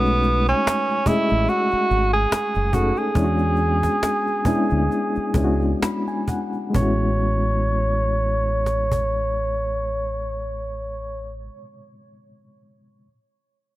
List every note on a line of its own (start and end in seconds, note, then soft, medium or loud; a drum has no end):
0.00 0.52 B1 medium
0.00 0.89 G#3 medium
0.00 0.89 A3 medium
0.00 0.44 B3 medium
0.00 0.89 C#4 medium
0.00 0.90 D#4 medium
0.00 0.90 F#4 medium
0.06 cajon slap soft
0.23 cajon slap soft
0.48 1.09 C#4 medium
0.48 cajon slap soft
0.67 cajon slap loud
0.67 cajon slap medium
0.89 cajon slap soft
1.06 2.47 G#3 medium
1.06 2.47 A3 medium
1.06 2.47 C#4 medium
1.06 1.50 E4 medium
1.06 2.48 G#4 medium
1.06 2.48 D#5 medium
1.06 muted fingered electric bass stroke soft
1.06 cajon bass medium
1.29 1.46 A1 medium
1.29 cajon slap soft
1.48 2.13 F#4 medium
1.48 cajon slap soft
1.70 muted fingered electric bass stroke soft
1.70 cajon slap soft
1.90 2.25 G#1 medium
1.90 cajon slap soft
2.13 2.76 G#4 medium
2.13 cajon slap soft
2.32 muted fingered electric bass stroke soft
2.32 cajon slap loud
2.32 cajon slap medium
2.54 2.90 F#1 medium
2.54 cajon slap soft
2.72 3.09 A3 medium
2.72 3.10 C#4 medium
2.72 3.10 D#4 medium
2.72 3.00 F#4 medium
2.72 3.09 G#4 medium
2.72 3.10 A4 medium
2.72 cajon bass medium
2.72 cajon slap soft
2.96 5.81 G#4 medium
2.96 cajon slap soft
3.15 3.87 E2 medium
3.15 4.26 G#3 medium
3.15 4.26 B3 medium
3.15 4.27 C#4 medium
3.15 4.27 D4 medium
3.15 3.24 E4 medium
3.15 cajon bass medium
3.24 4.31 F#4 medium
3.38 cajon slap soft
3.56 cajon slap soft
3.83 cajon bass medium
3.83 cajon slap soft
4.03 cajon slap medium
4.26 cajon slap soft
4.45 5.21 G#3 medium
4.45 5.22 B3 medium
4.45 5.22 C#4 medium
4.45 5.22 D4 medium
4.45 5.23 E4 medium
4.45 muted fingered electric bass stroke soft
4.45 cajon bass medium
4.70 4.87 D2 medium
4.70 cajon slap soft
4.91 cajon slap soft
5.15 muted fingered electric bass stroke soft
5.15 cajon slap soft
5.34 5.73 C#2 medium
5.34 6.54 G#3 medium
5.34 6.54 B3 medium
5.34 6.54 C#4 medium
5.34 6.55 D4 medium
5.34 5.44 E4 medium
5.34 cajon bass medium
5.44 6.58 F#4 medium
5.61 cajon slap soft
5.83 6.06 B5 medium
5.83 cajon slap medium
6.07 6.26 G#5 medium
6.07 cajon slap soft
6.28 6.72 F#5 medium
6.28 cajon bass medium
6.28 cajon slap soft
6.53 cajon slap soft
6.70 11.43 G#3 medium
6.70 11.46 B3 medium
6.74 11.48 A1 medium
6.74 11.49 C#4 medium
6.74 11.33 C#5 medium
6.74 cajon bass medium
6.80 11.52 E4 medium
6.80 11.55 F#4 medium
8.66 cajon slap soft
8.92 cajon bass medium